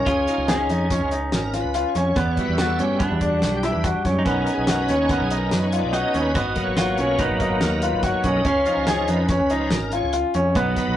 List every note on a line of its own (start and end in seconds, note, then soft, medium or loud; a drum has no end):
0.06 0.26 C#2 medium
0.06 0.44 C#4 medium
0.06 0.50 F4 loud
0.06 0.29 G#4 loud
0.06 kick medium
0.06 closed hi-hat medium
0.27 0.87 C#4 medium
0.27 0.88 D#4 soft
0.27 0.72 F4 medium
0.27 closed hi-hat medium
0.38 0.67 C#2 medium
0.48 2.22 C#4 medium
0.48 0.67 G#4 medium
0.48 snare loud
0.48 closed hi-hat medium
0.69 0.99 F2 medium
0.69 0.88 D#4 medium
0.69 0.90 G#4 medium
0.69 closed hi-hat medium
0.90 1.10 C#4 soft
0.90 1.09 C#4 medium
0.90 1.10 D#4 soft
0.90 1.10 F4 soft
0.90 kick medium
0.90 snare soft
0.90 closed hi-hat medium
1.01 1.30 C#2 medium
1.11 1.49 D#4 medium
1.11 closed hi-hat medium
1.32 1.61 G#1 loud
1.32 1.61 A#4 medium
1.32 snare medium
1.32 closed hi-hat medium
1.54 1.72 F4 medium
1.54 snare soft
1.54 closed hi-hat medium
1.61 1.83 C#2 medium
1.61 1.89 B4 medium
1.74 1.93 F4 medium
1.74 closed hi-hat medium
1.88 2.17 C#5 medium
1.95 2.15 F2 loud
1.95 2.14 C#4 medium
1.95 snare soft
1.95 closed hi-hat medium
2.16 2.36 E2 medium
2.16 3.03 B3 medium
2.16 2.54 B3 medium
2.16 2.31 D5 medium
2.16 kick loud
2.16 closed hi-hat medium
2.31 2.38 C#5 medium
2.37 4.22 G3 soft
2.37 3.14 E4 soft
2.37 3.00 F#4 medium
2.37 kick medium
2.37 closed hi-hat soft
2.45 2.77 E2 medium
2.45 2.59 B4 medium
2.58 2.77 F#4 medium
2.58 2.80 A4 medium
2.58 snare loud
2.58 closed hi-hat medium
2.79 3.08 G2 medium
2.79 2.98 C#4 medium
2.79 3.02 G4 medium
2.79 closed hi-hat medium
3.00 3.19 B3 medium
3.00 4.01 D4 medium
3.00 3.15 F#4 medium
3.00 kick loud
3.00 closed hi-hat medium
3.11 3.40 E2 loud
3.11 3.21 E4 medium
3.21 3.59 D4 medium
3.21 kick medium
3.21 closed hi-hat medium
3.29 3.57 F#4 medium
3.42 3.71 B1 medium
3.42 snare medium
3.42 closed hi-hat medium
3.56 3.71 G4 medium
3.63 3.82 E4 medium
3.63 snare soft
3.63 closed hi-hat medium
3.71 3.93 E2 medium
3.71 3.90 B4 medium
3.84 4.03 F#4 medium
3.84 kick loud
3.84 closed hi-hat medium
4.05 4.24 F#2 medium
4.05 4.23 C#4 medium
4.05 kick medium
4.05 snare soft
4.05 closed hi-hat medium
4.19 4.25 D#4 medium
4.25 4.45 B1 medium
4.25 6.31 B3 medium
4.25 4.63 B3 medium
4.25 5.92 C#4 medium
4.25 6.32 C#4 medium
4.25 6.32 D#4 medium
4.25 4.55 A#4 loud
4.25 kick medium
4.25 closed hi-hat medium
4.47 closed hi-hat medium
4.54 4.87 B1 medium
4.54 4.67 G#4 medium
4.67 4.87 F#4 medium
4.67 4.82 A#4 medium
4.67 snare loud
4.67 closed hi-hat medium
4.81 4.96 B4 medium
4.89 5.18 D#2 medium
4.89 5.08 C#4 medium
4.89 closed hi-hat medium
4.95 5.10 C#5 medium
5.09 5.29 B3 medium
5.09 5.23 A#4 medium
5.09 kick loud
5.09 closed hi-hat medium
5.20 5.49 B1 loud
5.20 5.38 G#4 medium
5.30 5.68 D#4 medium
5.30 closed hi-hat medium
5.37 5.52 A#4 medium
5.51 5.81 F#2 medium
5.51 5.66 B4 medium
5.51 snare medium
5.51 closed hi-hat medium
5.65 5.80 C#5 loud
5.72 5.91 F4 medium
5.72 closed hi-hat medium
5.79 6.02 B1 medium
5.79 5.92 D5 medium
5.93 6.32 D#4 medium
5.93 6.12 F#4 medium
5.93 6.22 D#5 medium
5.93 closed hi-hat medium
6.14 6.34 D#2 medium
6.14 6.33 C#4 medium
6.14 closed hi-hat medium
6.21 6.36 B4 medium
6.35 6.55 G#1 loud
6.35 6.73 B3 medium
6.35 6.77 F#4 loud
6.35 6.64 D#5 loud
6.35 kick loud
6.35 closed hi-hat medium
6.55 8.41 F#3 medium
6.55 8.41 A#3 medium
6.55 8.41 B3 soft
6.55 kick medium
6.55 closed hi-hat medium
6.63 6.96 G#1 medium
6.63 7.22 C#5 loud
6.77 7.16 F4 loud
6.77 6.96 F#4 medium
6.77 snare loud
6.77 closed hi-hat medium
6.98 7.27 B1 medium
6.98 7.17 C#4 medium
6.98 closed hi-hat medium
7.19 7.38 B3 medium
7.19 8.45 D#4 medium
7.19 kick loud
7.19 closed hi-hat medium
7.29 7.59 G#1 medium
7.40 7.78 D#4 medium
7.40 kick medium
7.40 closed hi-hat medium
7.61 7.91 D#2 loud
7.61 7.83 A#4 loud
7.61 snare loud
7.61 closed hi-hat medium
7.82 8.01 F4 medium
7.82 8.04 B4 medium
7.82 closed hi-hat medium
7.93 8.12 G#1 medium
8.03 8.22 F#4 medium
8.03 8.25 C#5 medium
8.03 kick medium
8.03 closed hi-hat medium
8.24 8.44 B1 loud
8.24 8.43 C#4 medium
8.24 8.46 D#5 medium
8.24 kick medium
8.24 closed hi-hat medium
8.45 8.64 C#2 loud
8.45 8.83 C#4 medium
8.45 10.63 C#4 medium
8.45 8.89 F5 loud
8.45 kick loud
8.45 closed hi-hat medium
8.66 9.26 F3 medium
8.66 9.26 C#4 soft
8.66 9.27 D#4 medium
8.66 closed hi-hat medium
8.77 9.06 C#2 medium
8.87 9.06 G#4 medium
8.87 9.10 C#5 loud
8.87 snare loud
8.87 closed hi-hat medium
9.08 9.37 F2 medium
9.08 9.27 D#4 medium
9.08 9.74 B4 loud
9.08 closed hi-hat medium
9.29 9.48 C#4 medium
9.29 kick loud
9.29 snare soft
9.29 closed hi-hat medium
9.39 9.69 C#2 loud
9.50 9.70 F3 medium
9.50 9.70 C#4 soft
9.50 9.88 D#4 medium
9.50 9.70 D#4 medium
9.50 closed hi-hat medium
9.71 10.01 G#1 loud
9.71 9.94 A#4 loud
9.71 snare loud
9.71 closed hi-hat medium
9.92 10.11 F4 medium
9.92 10.13 C#5 medium
9.92 closed hi-hat medium
10.03 10.23 C#2 medium
10.13 10.32 F4 medium
10.13 closed hi-hat medium
10.34 10.54 F2 medium
10.34 10.53 C#4 medium
10.34 closed hi-hat medium
10.55 10.75 B1 loud
10.55 10.97 F#3 medium
10.55 10.97 B3 medium
10.55 10.93 B3 medium
10.55 10.97 B3 medium
10.55 10.97 D#4 medium
10.55 kick loud
10.55 closed hi-hat medium
10.76 10.97 B4 medium
10.76 kick medium
10.76 snare soft
10.76 closed hi-hat medium
10.88 10.97 B1 medium